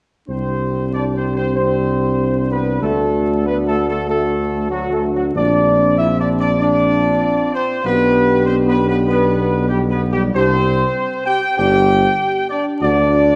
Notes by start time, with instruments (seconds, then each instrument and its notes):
0.28 tuba C2, trombone section C4, french horn section D4 G4, trumpet section C5
0.93 trombone section D4, trumpet section D5
1.15 trombone section C4, trumpet section C5
1.36 trombone section C4, trumpet section C5
1.55 trombone section C4, trumpet section C5
2.50 trombone section B3, trumpet section B4
2.82 tuba D2, trombone section A3, french horn section F#4, trumpet section A4
3.45 trombone section B3, trumpet section B4
3.66 trombone section A3, trumpet section A4
3.87 trombone section A3, trumpet section A4
4.08 trombone section A3, trumpet section A4
4.70 trombone section F#3, trumpet section F#4
4.92 trombone section A3, trumpet section A4
5.13 trombone section F#3, trumpet section F#4
5.35 tuba A#1, french horn section C4 F4, trombone section D4, trumpet section D5
5.98 trombone section E4, trumpet section E5
6.19 trombone section D4, trumpet section D5
6.39 trombone section D4, trumpet section D5
6.60 trombone section D4, trumpet section D5
7.54 trombone section C4, trumpet section C5
7.84 tuba B1, trombone section B3, french horn section D4 G4, trumpet section B4
8.45 trombone section C4, trumpet section C5
8.66 trombone section B3, trumpet section B4
8.87 trombone section B3, trumpet section B4
9.07 trombone section B3, trumpet section B4
9.69 trombone section G3, trumpet section G4
9.90 trombone section B3, trumpet section B4
10.12 trombone section G3, trumpet section G4
10.34 tuba C2, trombone section C4, french horn section D4 G4, trumpet section C5
11.26 trombone section G4, trumpet section G5
11.56 tuba G1, french horn section D4 G4, trombone section G4, trumpet section G5
12.49 trombone section D4, trumpet section D5
12.81 tuba D2, french horn section D4 F#4, trombone section D4, trumpet section D5